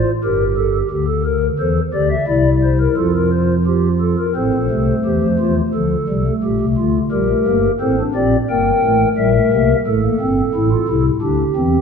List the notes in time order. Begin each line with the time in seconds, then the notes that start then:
Already playing: F4
0.24 G1 G2 G4 A#4
0.57 A4
0.90 D2 D3 G4
1.08 A4
1.25 A#4
1.59 E2 E3 A4 C5
1.93 D2 D3 G4 D5
2.11 E5
2.27 C2 C3 E4 D5
2.63 C5
2.80 A#4
2.97 F2 F3 F4 A4
3.15 A#4
3.32 C5
3.66 F4 G4
4.01 A4
4.18 A#4
4.35 A1 A2 C4 A4 C5
4.53 A#1 A#2
4.70 C2 C3 A3
5.05 E2 E3 G4
5.22 F2 F3
5.39 E2 E3 F4
5.74 D2 D3 F3 A4
6.09 C2 C3 G3
6.27 A3
6.43 A#1 A#2 G4
6.60 C2 C3
6.77 D2 D3 F4
7.12 A#1 A#2 G3 G4 A#4
7.29 A3
7.47 G1 G2 A#3
7.80 A1 A2 C4 A4 C5
7.99 D4
8.14 A#1 A#2 C4 G4 D5
8.50 G1 G2 A#3 A#4 G5
8.83 A1 A2 A3
9.18 A#1 A#2 G3 A#4 E5
9.35 A3
9.52 C2 C3 A#3
9.86 A1 A2 A3 A4
10.03 A#3
10.20 G1 G2 C4
10.54 A1 A2 E4
10.72 F4
10.88 C2 C3 E4
11.21 D2 D3 D4 G4
11.56 E2 E3 C4